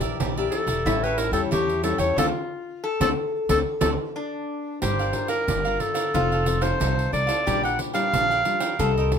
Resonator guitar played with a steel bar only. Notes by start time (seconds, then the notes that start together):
Already playing: G4
0.86 E4
2.18 F4
2.84 A4
4.16 D4
4.82 G4
6.14 F4
7.47 G4
8.80 A4